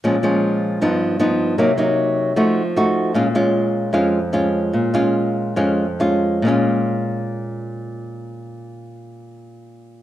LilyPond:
\new Staff \with { instrumentName = "Nylon-string guitar" } { \time 4/4 \key bes \minor \tempo 4 = 148 << { <f aes des'>8 <f aes des'>4. <f b dis'>4 <f b dis'>4 | <ges bes ees'>8 <ges bes ees'>4. <a ees' ges'>8 r8 <a ees' ges'>4 | <aes des' f'>8 <aes des' f'>4. <aes des' f'>8 r8 <aes des' f'>4~ | <aes des' f'>8 <aes des' f'>4. <aes des' f'>8 r8 <aes des' f'>4 |
<bes, aes des' f'>1~ | <bes, aes des' f'>1 | } \\ { bes,2 g,2 | c2 f2 | bes,2 f,2 | bes,2 f,2 |
r1 | r1 | } >> }